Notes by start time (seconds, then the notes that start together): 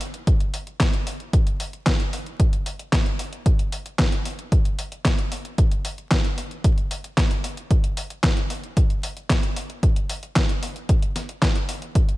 0.01 open hi-hat
0.14 closed hi-hat
0.27 kick, closed hi-hat
0.40 closed hi-hat
0.54 open hi-hat
0.67 closed hi-hat
0.80 kick, snare, clap, closed hi-hat
0.94 closed hi-hat
1.07 open hi-hat
1.20 closed hi-hat
1.33 kick, closed hi-hat
1.47 closed hi-hat
1.60 open hi-hat
1.73 closed hi-hat
1.86 kick, snare, clap, closed hi-hat
2.00 closed hi-hat
2.13 open hi-hat
2.26 closed hi-hat
2.40 kick, closed hi-hat
2.53 closed hi-hat
2.66 open hi-hat
2.79 closed hi-hat
2.93 kick, snare, clap, closed hi-hat
3.06 closed hi-hat
3.19 open hi-hat
3.33 closed hi-hat
3.46 kick, closed hi-hat
3.59 closed hi-hat
3.72 open hi-hat
3.86 closed hi-hat
3.99 kick, snare, clap, closed hi-hat
4.12 closed hi-hat
4.25 open hi-hat
4.39 closed hi-hat
4.52 kick, closed hi-hat
4.65 closed hi-hat
4.79 open hi-hat
4.92 closed hi-hat
5.05 kick, snare, clap, closed hi-hat
5.18 closed hi-hat
5.32 open hi-hat
5.45 closed hi-hat
5.58 kick, closed hi-hat
5.71 closed hi-hat
5.85 open hi-hat
5.98 closed hi-hat
6.11 kick, snare, clap, closed hi-hat
6.25 closed hi-hat
6.38 open hi-hat
6.51 closed hi-hat
6.64 kick, closed hi-hat
6.78 closed hi-hat
6.91 open hi-hat
7.04 closed hi-hat
7.17 kick, snare, clap, closed hi-hat
7.31 closed hi-hat
7.44 open hi-hat
7.57 closed hi-hat
7.71 kick, closed hi-hat
7.84 closed hi-hat
7.97 open hi-hat
8.10 closed hi-hat
8.24 kick, snare, clap, closed hi-hat
8.37 closed hi-hat
8.50 open hi-hat
8.63 closed hi-hat
8.77 kick, closed hi-hat
8.90 closed hi-hat
9.03 open hi-hat
9.17 closed hi-hat
9.30 kick, snare, clap, closed hi-hat
9.43 closed hi-hat
9.56 open hi-hat
9.70 closed hi-hat
9.83 kick, closed hi-hat
9.96 closed hi-hat
10.10 open hi-hat
10.23 closed hi-hat
10.36 kick, snare, clap, closed hi-hat
10.49 closed hi-hat
10.63 open hi-hat
10.76 closed hi-hat
10.89 kick, closed hi-hat
11.02 closed hi-hat
11.16 snare, open hi-hat
11.29 closed hi-hat
11.42 kick, snare, clap, closed hi-hat
11.55 closed hi-hat
11.69 open hi-hat
11.82 closed hi-hat
11.95 kick, closed hi-hat
12.09 closed hi-hat